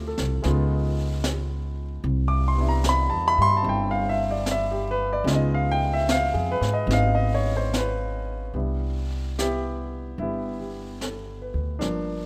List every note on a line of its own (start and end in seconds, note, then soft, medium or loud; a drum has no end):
0.00 0.13 D2 medium
0.00 0.44 A3 medium
0.00 0.44 C4 soft
0.00 0.45 E4 soft
0.00 0.45 F4 medium
0.00 0.28 G4 medium
0.00 0.07 A4 medium
0.07 0.62 A4 medium
0.18 0.43 C2 medium
0.18 snare soft
0.42 2.01 C#2 medium
0.42 2.03 G#3 medium
0.42 2.04 B3 medium
0.42 2.05 D#4 medium
0.42 brush sweep soft
0.42 snare soft
0.47 2.05 F4 medium
1.24 snare soft
1.24 hi-hat pedal soft
2.04 3.07 C2 medium
2.04 brush sweep soft
2.28 2.55 D6 medium
2.48 2.66 C6 medium
2.55 5.25 G3 soft
2.55 5.24 B3 soft
2.60 5.28 D4 soft
2.60 3.63 E4 medium
2.69 2.83 A#5 medium
2.84 snare medium
2.84 hi-hat pedal medium
2.89 3.13 B5 loud
3.10 3.36 E2 medium
3.10 3.36 A5 medium
3.28 3.33 B5 loud
3.38 3.63 G2 medium
3.38 3.57 C6 loud
3.57 3.65 A5 medium
3.62 5.22 G1 medium
3.62 5.25 C4 medium
3.62 5.27 E4 medium
3.62 brush sweep soft
3.69 3.93 G5 medium
3.91 4.17 F5 medium
4.09 4.27 E5 medium
4.31 4.45 D5 medium
4.46 snare soft
4.46 hi-hat pedal medium
4.51 4.75 E5 medium
4.71 4.98 G4 medium
4.91 5.08 B4 medium
5.13 5.26 D5 medium
5.24 6.30 C#2 medium
5.24 8.54 G#3 medium
5.24 6.87 B3 medium
5.24 6.90 D#4 medium
5.24 8.55 F4 medium
5.24 brush sweep soft
5.24 snare soft
5.34 5.57 D#5 medium
5.54 5.80 F5 medium
5.71 5.89 G5 loud
5.93 6.07 E5 medium
6.09 6.36 F5 loud
6.09 snare medium
6.09 hi-hat pedal medium
6.33 6.60 F2 medium
6.33 6.61 G#4 medium
6.52 6.70 B4 loud
6.61 6.86 G#2 medium
6.61 snare soft
6.74 6.88 D#5 medium
6.87 8.49 G#1 medium
6.87 8.53 B3 medium
6.87 8.55 C#4 soft
6.87 brush sweep soft
6.87 snare soft
6.91 8.56 D#4 medium
6.91 7.18 F5 loud
7.15 7.43 D#5 medium
7.34 7.53 C#5 medium
7.57 7.71 C5 medium
7.74 8.40 B4 medium
7.74 snare soft
7.74 hi-hat pedal medium
8.54 10.13 C2 medium
8.54 10.20 G3 soft
8.54 9.40 B3 soft
8.54 11.78 D4 soft
8.54 9.39 E4 soft
8.54 brush sweep soft
9.39 10.20 B3 medium
9.39 10.18 E4 medium
9.39 10.21 G4 medium
9.39 snare soft
9.39 hi-hat pedal medium
10.18 11.49 G1 medium
10.18 11.77 G3 soft
10.18 11.77 B3 medium
10.18 11.76 E4 medium
10.18 brush sweep soft
10.60 11.16 G4 soft
11.01 11.64 A4 soft
11.01 snare soft
11.01 hi-hat pedal soft
11.42 11.97 B4 soft
11.54 11.78 D2 medium
11.79 12.26 G1 medium
11.79 12.26 F3 medium
11.79 12.26 A#3 medium
11.79 12.26 D4 medium
11.79 brush sweep soft
11.79 snare soft